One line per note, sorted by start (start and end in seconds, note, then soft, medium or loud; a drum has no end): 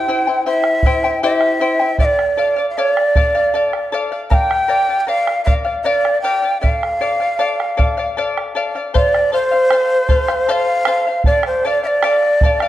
0.00 0.43 G5 medium
0.08 0.27 E4 medium
0.08 0.27 C5 medium
0.08 0.27 E5 medium
0.08 0.26 G5 medium
0.27 0.45 E4 soft
0.27 0.46 C5 soft
0.27 0.46 G5 medium
0.46 0.85 E4 medium
0.46 0.85 C5 medium
0.46 0.84 E5 medium
0.46 1.19 E5 medium
0.46 0.85 G5 medium
0.64 bombo rim medium
0.83 1.04 E4 medium
0.83 1.03 C5 medium
0.83 1.04 E5 soft
0.83 1.03 G5 medium
0.83 bombo low medium
1.03 1.22 E4 soft
1.03 1.23 C5 soft
1.03 1.22 G5 medium
1.03 bombo rim soft
1.23 1.60 E4 medium
1.23 1.61 G4 medium
1.23 1.60 C5 medium
1.23 1.59 E5 medium
1.23 1.96 E5 medium
1.23 1.61 G5 medium
1.41 bombo rim soft
1.60 1.80 E4 medium
1.60 1.79 C5 medium
1.60 1.80 E5 medium
1.60 1.78 G5 medium
1.79 1.98 E4 soft
1.79 2.00 C5 soft
1.79 1.99 G5 medium
1.98 2.36 A4 soft
1.98 2.36 D5 medium
1.98 2.06 E5 medium
1.98 2.37 F5 medium
1.98 bombo low medium
2.05 2.66 D5 medium
2.19 bombo rim soft
2.37 2.57 A4 medium
2.37 2.57 D5 medium
2.37 2.55 F5 medium
2.56 2.77 D5 soft
2.56 2.76 F5 soft
2.70 2.79 F5 soft
2.78 3.14 A4 medium
2.78 2.89 C#5 medium
2.78 3.15 D5 medium
2.78 3.16 F5 medium
2.89 3.92 D5 medium
2.97 bombo rim medium
3.16 3.35 A4 medium
3.16 3.35 D5 medium
3.16 3.33 F5 medium
3.16 bombo low medium
3.35 3.54 D5 soft
3.35 3.54 F5 medium
3.35 bombo rim soft
3.54 3.91 A4 medium
3.54 3.92 D5 medium
3.54 3.93 F5 medium
3.73 bombo rim medium
3.92 4.11 A4 medium
3.92 4.12 D5 medium
3.92 4.11 F5 medium
4.12 4.30 D5 soft
4.12 4.30 F5 soft
4.30 4.67 A#4 medium
4.30 4.68 D5 medium
4.30 4.68 F5 medium
4.30 5.00 G5 medium
4.30 4.35 A5 medium
4.30 bombo low medium
4.51 bombo rim medium
4.68 4.88 A#4 medium
4.68 4.88 D5 medium
4.68 4.88 F5 medium
4.89 5.07 D5 soft
4.89 5.08 F5 soft
5.00 5.05 G5 medium
5.05 5.45 A#4 medium
5.05 5.45 D5 medium
5.05 5.44 F5 medium
5.05 5.46 F5 medium
5.05 5.10 G5 medium
5.27 bombo rim medium
5.44 5.65 A#4 medium
5.44 5.64 D5 medium
5.44 5.53 F5 medium
5.44 5.63 F5 medium
5.44 bombo low medium
5.65 5.84 D5 soft
5.65 5.84 F5 medium
5.65 bombo rim soft
5.83 6.22 A#4 medium
5.83 6.23 D5 medium
5.83 6.20 D5 medium
5.83 5.88 E5 medium
5.83 6.23 F5 medium
6.05 bombo rim soft
6.22 6.43 A#4 medium
6.22 6.43 D5 medium
6.22 6.41 F5 medium
6.22 6.58 G5 medium
6.42 6.61 D5 soft
6.42 6.61 F5 medium
6.61 6.99 A4 soft
6.61 7.00 D5 medium
6.61 8.12 F5 medium
6.61 7.00 F5 medium
6.61 bombo low medium
6.83 bombo rim medium
7.01 7.20 A4 medium
7.01 7.20 D5 medium
7.01 7.19 F5 medium
7.01 bombo rim soft
7.20 7.38 D5 soft
7.20 7.39 F5 soft
7.39 7.76 A4 medium
7.39 7.76 D5 medium
7.39 7.77 F5 medium
7.39 bombo rim soft
7.60 bombo rim medium
7.77 7.97 A4 medium
7.77 7.97 D5 medium
7.77 7.96 F5 medium
7.77 bombo low medium
7.97 8.17 D5 soft
7.97 8.16 F5 medium
7.97 bombo rim soft
8.17 8.54 A4 medium
8.17 8.55 D5 medium
8.17 8.55 F5 medium
8.37 bombo rim medium
8.55 8.74 A4 medium
8.55 8.75 D5 medium
8.55 8.74 F5 medium
8.75 8.94 D5 soft
8.75 8.94 F5 medium
8.75 bombo rim soft
8.94 9.31 A4 medium
8.94 9.32 C5 medium
8.94 9.31 D5 medium
8.94 9.32 F5 medium
8.94 bombo low medium
9.14 bombo rim medium
9.32 9.51 A4 medium
9.32 9.52 C5 medium
9.32 10.53 C5 loud
9.32 9.50 F5 medium
9.32 bombo rim soft
9.51 9.70 C5 soft
9.51 9.71 F5 soft
9.51 bombo rim soft
9.71 10.07 A4 medium
9.71 10.08 C5 medium
9.71 10.09 F5 medium
9.71 bombo rim medium
9.90 bombo rim soft
10.09 10.28 A4 medium
10.09 10.28 C5 medium
10.09 10.27 F5 medium
10.09 bombo low medium
10.28 10.48 C5 soft
10.28 10.48 F5 soft
10.28 bombo rim medium
10.47 10.85 A4 medium
10.47 10.87 C5 medium
10.47 10.87 F5 medium
10.47 bombo rim soft
10.51 11.26 F5 loud
10.85 11.06 A4 medium
10.85 11.06 C5 medium
10.85 11.06 F5 medium
10.85 bombo rim medium
11.07 11.27 C5 soft
11.07 11.26 F5 medium
11.24 11.63 A4 medium
11.24 11.64 D5 medium
11.24 11.44 D5 medium
11.24 11.65 F5 medium
11.24 bombo low medium
11.43 11.68 C5 medium
11.43 bombo rim medium
11.63 11.84 A4 medium
11.63 11.84 D5 medium
11.63 11.83 D5 medium
11.63 11.83 F5 medium
11.63 bombo rim soft
11.83 12.03 D5 soft
11.83 12.68 D5 medium
11.83 11.88 E5 medium
11.83 12.03 F5 soft
11.83 bombo rim soft
12.03 12.41 A4 medium
12.03 12.42 D5 medium
12.03 12.42 F5 medium
12.03 bombo rim medium
12.23 bombo rim soft
12.41 12.62 A4 medium
12.41 12.62 D5 medium
12.41 12.61 F5 medium
12.41 bombo low medium
12.60 12.68 D5 soft
12.60 12.68 F5 medium
12.60 bombo rim medium